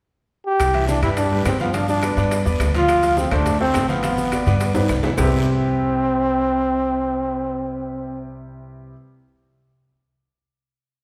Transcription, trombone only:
0.46 G4
0.88 D4
1.03 E4
1.17 D4
1.46 C4
1.60 B3
1.75 D4
1.89 D4
2.76 F4
3.18 C4
3.33 D4
3.61 C4
3.89 B3
5.18 C4

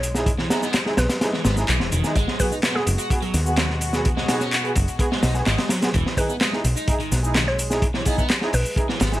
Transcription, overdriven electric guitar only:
0.39 E3
0.51 B3
0.63 B3
1.34 E3
1.45 B3
1.69 E3
1.92 D#3
2.16 G#3
2.40 F#3
2.52 D#4
2.63 B3
2.99 F#4
3.22 F#3
3.58 F#3
4.17 G#3
4.29 D#4
4.41 C#4
5.11 G#3
5.23 D#4
5.47 G#3
5.70 F#3
5.94 E3
6.18 D#3
6.30 B3
6.41 G#3
6.77 D#4
7.00 D#3
7.35 D#3
7.95 E3
8.06 B3
8.18 B3
8.89 E3
9.01 B3

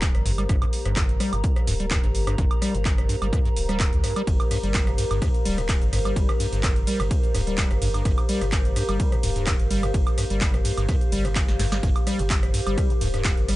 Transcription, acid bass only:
0.26 G2
0.38 G3
0.49 G2
0.62 G2
0.85 G2
0.97 G2
1.20 G3
1.33 F2
1.67 G2
1.80 G3
1.91 G2
2.03 G2
2.27 G2
2.38 G2
2.62 G3
2.74 F2
3.09 G2
3.22 G3
3.33 G2
3.45 G2
3.69 G3
3.80 G2
4.04 G2
4.16 G3
4.51 G2
4.63 G3
4.87 G2
4.98 G2
5.11 G2
5.22 G2
5.45 G3
5.58 F2
5.93 G2
6.05 G3
6.29 G2
6.40 G2
6.53 G2
6.64 G2
6.87 G3
7.00 F2
7.35 G2
7.47 G3
7.71 G2
7.82 G2
7.94 G2
8.05 G2
8.29 G3
8.41 F2
8.76 G2
8.89 G3
9.12 G2
9.23 G2
9.36 G2
9.47 G2
9.71 G3
9.83 F2
10.18 G2
10.31 G3
10.54 G2
10.65 G2
10.78 G2
10.89 G2
11.12 G3
11.25 F2
11.59 G2
11.72 G3
11.83 G2
12.07 G3
12.19 F2
12.54 G2
12.67 G3
12.90 G2
13.01 G2
13.14 G2
13.25 G2
13.48 G3

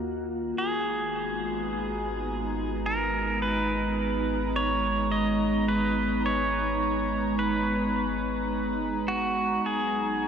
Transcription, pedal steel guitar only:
0.58 G#4
2.86 A#4
3.42 B4
4.56 C#5
5.12 D#5
5.68 B4
6.26 C#5
7.39 B4
9.08 F#4
9.66 G#4

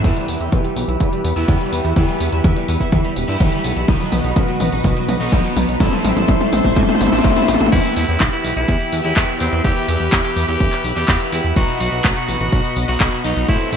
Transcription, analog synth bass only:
0.04 E2
0.28 E2
0.40 E2
0.52 B1
0.76 B1
0.88 B1
1.00 E2
1.24 E2
1.36 E2
1.48 E2
1.72 E2
1.85 E2
1.96 E2
2.20 E2
2.33 E2
2.44 E2
2.69 E2
2.80 E2
2.92 E2
3.16 E1
3.28 G2
3.40 B1
3.64 B1
3.77 B1
3.88 B1
4.13 B1
4.24 B1
4.36 A1
4.61 A1
4.73 A1
4.84 B1
5.08 B1
5.20 B1
5.32 B1
5.56 B1
5.68 B1
5.80 A1
6.05 A1
6.17 A1
6.28 A1
6.53 A1
6.64 A1
6.76 A2
7.01 G1
7.13 A1
7.24 A1
7.49 A1
7.61 A1
7.72 E2
7.97 E2
8.09 E2
8.20 B1
8.45 B1
8.57 B1
8.68 E2
8.93 E2
9.04 E2
9.16 E2
9.41 E2
9.53 E2
9.64 E2
9.88 E2
10.00 E2
10.12 E2
10.36 E2
10.48 E2
10.60 E1
10.84 B1
10.96 E2
11.08 E2
11.32 E2
11.44 E2
11.56 B1
11.80 B1
11.92 B1
12.04 A1
12.28 A1
12.40 A1
12.52 B1
12.76 B1
12.88 B1
13.00 B1
13.25 B1
13.37 B1
13.49 A1
13.73 A1

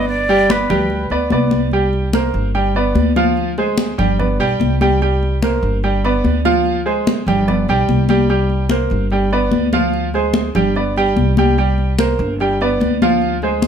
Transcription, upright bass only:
Already playing: G1
0.70 D2
1.10 D2
1.31 C2
2.34 G1
2.95 D2
3.98 G1
4.39 B1
4.60 C2
5.62 G1
6.24 D2
7.27 G1
7.68 B1
7.88 C2
8.91 G1
9.52 D2
10.55 G1
11.16 C2
12.19 G1
12.80 D2

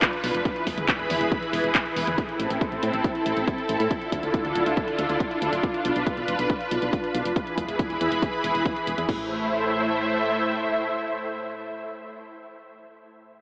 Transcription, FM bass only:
0.24 B1
0.34 F1
0.67 E1
0.78 E1
0.99 E1
1.10 E2
1.21 E1
1.53 E1
1.64 E1
1.96 E1
2.07 E2
2.40 A1
2.50 A1
2.72 A1
2.83 A2
2.94 A1
3.26 A1
3.37 A1
3.69 A1
3.80 A2
4.12 D2
4.23 D2
4.45 D2
4.56 D1
4.66 D2
4.99 D2
5.09 D2
5.42 D2
5.53 D1
5.85 B1
5.96 B1
6.17 B1
6.28 F1
6.39 B1
6.71 B1
6.82 B1
7.15 B1
7.25 F1
7.58 E1
7.69 E1
7.90 E1
8.01 E2
8.12 E1
8.44 E1
8.55 E1
8.87 E1
8.98 E2
9.09 A1

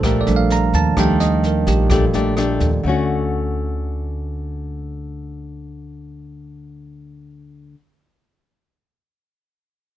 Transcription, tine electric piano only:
Already playing: F3 G3 A3 D4 A4 C5
0.06 A#4
0.21 D5
0.27 F3 G3 A3 D4
0.36 F5
0.52 A#5
0.75 A5
0.97 F3 G3 A3 D4 G5
1.20 D#5
1.46 A#4
1.68 G4
1.92 A4

